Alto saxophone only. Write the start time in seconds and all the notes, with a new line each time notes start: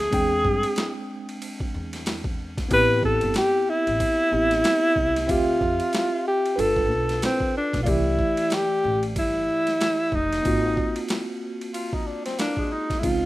Already playing: G#4
2.73 B4
3.05 A4
3.38 G4
3.70 E4
5.31 F4
6.28 G4
6.60 A4
7.25 C4
7.57 D4
7.83 F4
7.89 E4
8.54 G4
9.19 E4
10.15 D#4
12.41 D4
12.73 D#4
12.99 E4
13.04 F4